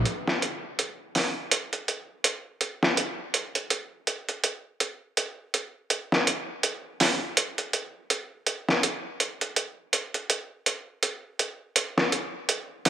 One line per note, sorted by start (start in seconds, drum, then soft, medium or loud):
0.05 closed hi-hat medium
0.28 snare soft
0.42 closed hi-hat soft
0.79 closed hi-hat medium
1.15 snare soft
1.15 open hi-hat medium
1.51 closed hi-hat medium
1.73 closed hi-hat soft
1.88 closed hi-hat medium
2.24 closed hi-hat medium
2.61 closed hi-hat medium
2.83 snare soft
2.97 closed hi-hat medium
3.34 closed hi-hat medium
3.55 closed hi-hat soft
3.70 closed hi-hat medium
4.07 closed hi-hat medium
4.29 closed hi-hat soft
4.44 closed hi-hat medium
4.80 closed hi-hat medium
5.17 closed hi-hat medium
5.54 closed hi-hat medium
5.90 closed hi-hat medium
6.12 snare soft
6.27 closed hi-hat medium
6.63 closed hi-hat medium
7.00 snare soft
7.00 open hi-hat medium
7.37 closed hi-hat medium
7.58 closed hi-hat soft
7.73 closed hi-hat medium
8.10 closed hi-hat medium
8.47 closed hi-hat medium
8.69 snare soft
8.83 closed hi-hat medium
9.20 closed hi-hat medium
9.41 closed hi-hat soft
9.56 closed hi-hat medium
9.93 closed hi-hat medium
10.14 closed hi-hat soft
10.30 closed hi-hat medium
10.66 closed hi-hat medium
11.03 closed hi-hat medium
11.39 closed hi-hat medium
11.76 closed hi-hat medium
11.98 snare soft
12.12 closed hi-hat medium
12.49 closed hi-hat medium
12.85 snare soft
12.85 open hi-hat medium